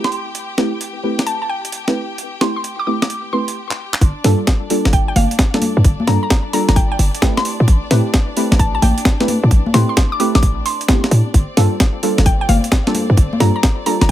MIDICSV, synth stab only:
0, 0, Header, 1, 2, 480
1, 0, Start_track
1, 0, Tempo, 458015
1, 366, Time_signature, 4, 2, 24, 8
1, 14790, End_track
2, 0, Start_track
2, 0, Title_t, "Synth stab"
2, 0, Program_c, 0, 62
2, 0, Note_on_c, 0, 57, 77
2, 0, Note_on_c, 0, 60, 73
2, 0, Note_on_c, 0, 64, 72
2, 0, Note_on_c, 0, 67, 73
2, 0, Note_on_c, 0, 71, 89
2, 586, Note_off_c, 0, 57, 0
2, 586, Note_off_c, 0, 71, 0
2, 587, Note_off_c, 0, 60, 0
2, 587, Note_off_c, 0, 64, 0
2, 587, Note_off_c, 0, 67, 0
2, 604, Note_on_c, 0, 57, 94
2, 605, Note_on_c, 0, 60, 83
2, 605, Note_on_c, 0, 64, 86
2, 605, Note_on_c, 0, 67, 87
2, 605, Note_on_c, 0, 71, 100
2, 765, Note_off_c, 0, 57, 0
2, 766, Note_off_c, 0, 60, 0
2, 766, Note_off_c, 0, 64, 0
2, 766, Note_off_c, 0, 67, 0
2, 766, Note_off_c, 0, 71, 0
2, 1085, Note_on_c, 0, 57, 86
2, 1085, Note_on_c, 0, 60, 82
2, 1085, Note_on_c, 0, 64, 79
2, 1085, Note_on_c, 0, 67, 81
2, 1085, Note_on_c, 0, 71, 96
2, 1927, Note_off_c, 0, 57, 0
2, 1927, Note_off_c, 0, 60, 0
2, 1927, Note_off_c, 0, 64, 0
2, 1927, Note_off_c, 0, 67, 0
2, 1927, Note_off_c, 0, 71, 0
2, 1966, Note_on_c, 0, 57, 80
2, 1966, Note_on_c, 0, 60, 75
2, 1966, Note_on_c, 0, 64, 74
2, 1966, Note_on_c, 0, 67, 74
2, 1966, Note_on_c, 0, 71, 91
2, 2143, Note_off_c, 0, 57, 0
2, 2143, Note_off_c, 0, 60, 0
2, 2143, Note_off_c, 0, 64, 0
2, 2143, Note_off_c, 0, 67, 0
2, 2143, Note_off_c, 0, 71, 0
2, 2526, Note_on_c, 0, 60, 83
2, 2526, Note_on_c, 0, 64, 84
2, 2526, Note_on_c, 0, 67, 83
2, 2526, Note_on_c, 0, 71, 99
2, 2527, Note_on_c, 0, 57, 92
2, 2686, Note_off_c, 0, 60, 0
2, 2686, Note_off_c, 0, 64, 0
2, 2686, Note_off_c, 0, 67, 0
2, 2686, Note_off_c, 0, 71, 0
2, 2687, Note_off_c, 0, 57, 0
2, 3006, Note_on_c, 0, 71, 98
2, 3007, Note_on_c, 0, 57, 84
2, 3007, Note_on_c, 0, 60, 78
2, 3007, Note_on_c, 0, 64, 81
2, 3007, Note_on_c, 0, 67, 77
2, 3470, Note_off_c, 0, 57, 0
2, 3470, Note_off_c, 0, 71, 0
2, 3471, Note_off_c, 0, 60, 0
2, 3471, Note_off_c, 0, 64, 0
2, 3471, Note_off_c, 0, 67, 0
2, 3487, Note_on_c, 0, 67, 75
2, 3488, Note_on_c, 0, 57, 85
2, 3488, Note_on_c, 0, 60, 78
2, 3488, Note_on_c, 0, 64, 78
2, 3488, Note_on_c, 0, 71, 93
2, 3695, Note_off_c, 0, 57, 0
2, 3695, Note_off_c, 0, 60, 0
2, 3695, Note_off_c, 0, 64, 0
2, 3695, Note_off_c, 0, 67, 0
2, 3695, Note_off_c, 0, 71, 0
2, 4448, Note_on_c, 0, 55, 100
2, 4448, Note_on_c, 0, 58, 87
2, 4448, Note_on_c, 0, 62, 88
2, 4448, Note_on_c, 0, 65, 87
2, 4448, Note_on_c, 0, 69, 107
2, 4607, Note_off_c, 0, 55, 0
2, 4607, Note_off_c, 0, 58, 0
2, 4607, Note_off_c, 0, 62, 0
2, 4607, Note_off_c, 0, 65, 0
2, 4607, Note_off_c, 0, 69, 0
2, 4927, Note_on_c, 0, 55, 90
2, 4927, Note_on_c, 0, 58, 83
2, 4927, Note_on_c, 0, 62, 82
2, 4927, Note_on_c, 0, 65, 81
2, 4927, Note_on_c, 0, 69, 98
2, 5768, Note_off_c, 0, 62, 0
2, 5768, Note_off_c, 0, 65, 0
2, 5768, Note_off_c, 0, 69, 0
2, 5769, Note_off_c, 0, 55, 0
2, 5769, Note_off_c, 0, 58, 0
2, 5806, Note_on_c, 0, 55, 84
2, 5806, Note_on_c, 0, 69, 92
2, 5807, Note_on_c, 0, 58, 77
2, 5807, Note_on_c, 0, 62, 78
2, 5807, Note_on_c, 0, 65, 75
2, 5983, Note_off_c, 0, 55, 0
2, 5983, Note_off_c, 0, 58, 0
2, 5983, Note_off_c, 0, 62, 0
2, 5983, Note_off_c, 0, 65, 0
2, 5983, Note_off_c, 0, 69, 0
2, 6365, Note_on_c, 0, 65, 86
2, 6366, Note_on_c, 0, 55, 91
2, 6366, Note_on_c, 0, 58, 87
2, 6366, Note_on_c, 0, 62, 86
2, 6366, Note_on_c, 0, 69, 103
2, 6526, Note_off_c, 0, 55, 0
2, 6526, Note_off_c, 0, 58, 0
2, 6526, Note_off_c, 0, 62, 0
2, 6526, Note_off_c, 0, 65, 0
2, 6526, Note_off_c, 0, 69, 0
2, 6846, Note_on_c, 0, 62, 81
2, 6846, Note_on_c, 0, 65, 84
2, 6846, Note_on_c, 0, 69, 94
2, 6847, Note_on_c, 0, 55, 86
2, 6847, Note_on_c, 0, 58, 82
2, 7547, Note_off_c, 0, 55, 0
2, 7547, Note_off_c, 0, 58, 0
2, 7547, Note_off_c, 0, 62, 0
2, 7547, Note_off_c, 0, 65, 0
2, 7547, Note_off_c, 0, 69, 0
2, 7567, Note_on_c, 0, 57, 83
2, 7567, Note_on_c, 0, 67, 74
2, 7567, Note_on_c, 0, 71, 88
2, 7568, Note_on_c, 0, 60, 73
2, 7568, Note_on_c, 0, 64, 76
2, 8267, Note_off_c, 0, 57, 0
2, 8267, Note_off_c, 0, 71, 0
2, 8268, Note_off_c, 0, 60, 0
2, 8268, Note_off_c, 0, 64, 0
2, 8268, Note_off_c, 0, 67, 0
2, 8287, Note_on_c, 0, 57, 98
2, 8287, Note_on_c, 0, 71, 110
2, 8288, Note_on_c, 0, 60, 88
2, 8288, Note_on_c, 0, 64, 92
2, 8288, Note_on_c, 0, 67, 90
2, 8447, Note_off_c, 0, 57, 0
2, 8447, Note_off_c, 0, 60, 0
2, 8447, Note_off_c, 0, 64, 0
2, 8447, Note_off_c, 0, 67, 0
2, 8447, Note_off_c, 0, 71, 0
2, 8767, Note_on_c, 0, 57, 91
2, 8767, Note_on_c, 0, 60, 81
2, 8767, Note_on_c, 0, 67, 80
2, 8768, Note_on_c, 0, 64, 82
2, 8768, Note_on_c, 0, 71, 97
2, 9608, Note_off_c, 0, 57, 0
2, 9608, Note_off_c, 0, 60, 0
2, 9608, Note_off_c, 0, 67, 0
2, 9609, Note_off_c, 0, 64, 0
2, 9609, Note_off_c, 0, 71, 0
2, 9647, Note_on_c, 0, 57, 84
2, 9647, Note_on_c, 0, 60, 76
2, 9647, Note_on_c, 0, 64, 77
2, 9647, Note_on_c, 0, 67, 78
2, 9647, Note_on_c, 0, 71, 92
2, 9823, Note_off_c, 0, 57, 0
2, 9823, Note_off_c, 0, 60, 0
2, 9823, Note_off_c, 0, 64, 0
2, 9823, Note_off_c, 0, 67, 0
2, 9823, Note_off_c, 0, 71, 0
2, 10208, Note_on_c, 0, 57, 94
2, 10208, Note_on_c, 0, 60, 86
2, 10208, Note_on_c, 0, 64, 87
2, 10208, Note_on_c, 0, 67, 86
2, 10208, Note_on_c, 0, 71, 105
2, 10367, Note_off_c, 0, 57, 0
2, 10367, Note_off_c, 0, 60, 0
2, 10367, Note_off_c, 0, 64, 0
2, 10367, Note_off_c, 0, 67, 0
2, 10367, Note_off_c, 0, 71, 0
2, 10686, Note_on_c, 0, 57, 87
2, 10686, Note_on_c, 0, 67, 79
2, 10686, Note_on_c, 0, 71, 96
2, 10687, Note_on_c, 0, 60, 80
2, 10687, Note_on_c, 0, 64, 80
2, 11387, Note_off_c, 0, 57, 0
2, 11387, Note_off_c, 0, 60, 0
2, 11387, Note_off_c, 0, 64, 0
2, 11387, Note_off_c, 0, 67, 0
2, 11387, Note_off_c, 0, 71, 0
2, 11407, Note_on_c, 0, 59, 90
2, 11407, Note_on_c, 0, 60, 76
2, 11407, Note_on_c, 0, 64, 73
2, 11407, Note_on_c, 0, 67, 74
2, 11408, Note_on_c, 0, 57, 83
2, 11877, Note_off_c, 0, 57, 0
2, 11877, Note_off_c, 0, 59, 0
2, 11877, Note_off_c, 0, 60, 0
2, 11877, Note_off_c, 0, 64, 0
2, 11877, Note_off_c, 0, 67, 0
2, 12126, Note_on_c, 0, 55, 97
2, 12126, Note_on_c, 0, 58, 86
2, 12126, Note_on_c, 0, 62, 91
2, 12126, Note_on_c, 0, 65, 88
2, 12126, Note_on_c, 0, 69, 109
2, 12286, Note_off_c, 0, 55, 0
2, 12286, Note_off_c, 0, 58, 0
2, 12286, Note_off_c, 0, 62, 0
2, 12286, Note_off_c, 0, 65, 0
2, 12286, Note_off_c, 0, 69, 0
2, 12606, Note_on_c, 0, 55, 90
2, 12606, Note_on_c, 0, 58, 83
2, 12606, Note_on_c, 0, 62, 84
2, 12606, Note_on_c, 0, 65, 82
2, 12606, Note_on_c, 0, 69, 101
2, 13448, Note_off_c, 0, 55, 0
2, 13448, Note_off_c, 0, 58, 0
2, 13448, Note_off_c, 0, 62, 0
2, 13448, Note_off_c, 0, 65, 0
2, 13448, Note_off_c, 0, 69, 0
2, 13486, Note_on_c, 0, 55, 84
2, 13486, Note_on_c, 0, 58, 74
2, 13486, Note_on_c, 0, 62, 75
2, 13486, Note_on_c, 0, 69, 93
2, 13487, Note_on_c, 0, 65, 75
2, 13663, Note_off_c, 0, 55, 0
2, 13663, Note_off_c, 0, 58, 0
2, 13663, Note_off_c, 0, 62, 0
2, 13663, Note_off_c, 0, 65, 0
2, 13663, Note_off_c, 0, 69, 0
2, 14046, Note_on_c, 0, 55, 94
2, 14046, Note_on_c, 0, 58, 83
2, 14046, Note_on_c, 0, 62, 86
2, 14046, Note_on_c, 0, 69, 102
2, 14047, Note_on_c, 0, 65, 88
2, 14206, Note_off_c, 0, 55, 0
2, 14206, Note_off_c, 0, 58, 0
2, 14206, Note_off_c, 0, 62, 0
2, 14206, Note_off_c, 0, 69, 0
2, 14207, Note_off_c, 0, 65, 0
2, 14527, Note_on_c, 0, 55, 91
2, 14527, Note_on_c, 0, 58, 83
2, 14527, Note_on_c, 0, 62, 80
2, 14527, Note_on_c, 0, 65, 83
2, 14527, Note_on_c, 0, 69, 98
2, 14790, Note_off_c, 0, 55, 0
2, 14790, Note_off_c, 0, 58, 0
2, 14790, Note_off_c, 0, 62, 0
2, 14790, Note_off_c, 0, 65, 0
2, 14790, Note_off_c, 0, 69, 0
2, 14790, End_track
0, 0, End_of_file